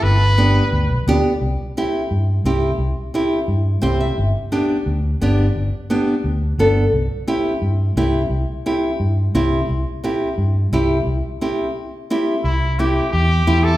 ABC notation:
X:1
M:4/4
L:1/16
Q:1/4=174
K:C
V:1 name="Trumpet"
B12 z4 | z16 | z16 | z16 |
z16 | z16 | z16 | z16 |
z16 | E4 G4 G6 A2 |]
V:2 name="Nylon-string guitar"
z4 [B,DG]2 z6 [B,DG]2 z2 | z4 [CEG]2 z6 [CEG]2 z2 | z4 [CEG]2 z6 [CEGc]2 e2 | z4 [B,DG]2 z6 [B,DG]2 z2 |
z4 [B,DG]2 z6 [B,DA]2 z2 | z4 [CEG]2 z6 [CEG]2 z2 | z4 [CEG]2 z6 [CEG]2 z2 | z4 [CEG]2 z6 [CEG]2 z2 |
z4 [CEG]2 z6 [CEG]2 z2 | z4 [CEG]2 z6 [CEG]2 z2 |]
V:3 name="Fingered electric bass" clef=bass
G,,,8 D,,2 B,,, z D,,2 z2 | C,,2 z6 G,,4 C,,4 | C,,2 z6 G,,4 C,,4 | G,,,2 z6 D,,4 G,,,4 |
G,,,2 z6 D,,4 G,,,4 | C,,2 z6 G,,4 C,,4 | C,,2 z6 G,,4 C,,4 | C,,2 z6 G,,4 C,,4 |
C,,2 z12 z2 | C,,8 E,,4 E,,4 |]